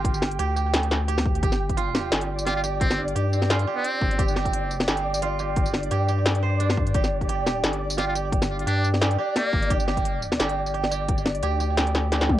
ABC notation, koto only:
X:1
M:4/4
L:1/8
Q:"Swing 16ths" 1/4=174
K:Cm
V:1 name="Koto"
G2 G G3 G z | G z F G3 G G- | G2 G z F G3 | G G3 G z F G- |
G2 G G2 c D z | G z G G3 G G- | G2 G z G G3 | G G3 G z G G- |
G2 G G3 G z |]